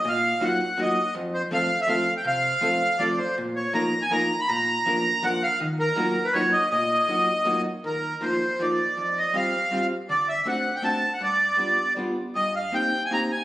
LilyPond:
<<
  \new Staff \with { instrumentName = "Accordion" } { \time 3/4 \key ees \minor \tempo 4 = 161 f''4 ges''4 ees''4 | r8 c''8 f''8. fes''16 f''8. g''16 | f''2 d''8 c''8 | r8 des''8 bes''8. aes''16 bes''8. ces'''16 |
bes''2 ges''8 f''8 | r8 bes'4~ bes'16 ces''16 des''8 ees''8 | ees''2~ ees''8 r8 | \key ees \major bes'4 c''4 d''4~ |
d''8 ees''8 f''4. r8 | d''8 fes''8 fis''8. g''16 a''8. fis''16 | d''2 r4 | ees''8 f''8 g''8. aes''16 bes''8 aes''8 | }
  \new Staff \with { instrumentName = "Hollow-body jazz guitar" } { \time 3/4 \key ees \minor bes,4 <ges bes ees' f' ges'>8 r8 <ges bes ees' f' ges'>8 r8 | f,4 <f a c' f' a'>8 r8 <f a c' f' a'>8 r8 | c4 <f a c' f' a'>8 r8 <f a c' f' a'>8 r8 | bes,4 <f bes ees' f' bes'>8 r8 <f bes ees' f' bes'>8 r8 |
bes,4 <f bes d' f' bes'>8 r8 <f bes d' f' bes'>8 r8 | ees4 <ges bes ees' f' ges'>8 r8 <ges bes ees' f' ges'>8 r8 | bes,4 <ges bes ees' f' ges'>8 r8 <ges bes ees' f' ges'>8 r8 | \key ees \major ees4 <f bes ees' f'>8 r8 <f bes ees' f'>8 r8 |
f,4 <g c' f' g'>8 r8 <g c' f' g'>8 r8 | d4 <a c' d' fis'>8 r8 <a c' d' fis'>8 r8 | g,4 <g b d' f'>8 r8 <g b d' f'>8 r8 | g,4 <bes c' ees' g'>8 r8 <bes c' ees' g'>8 r8 | }
>>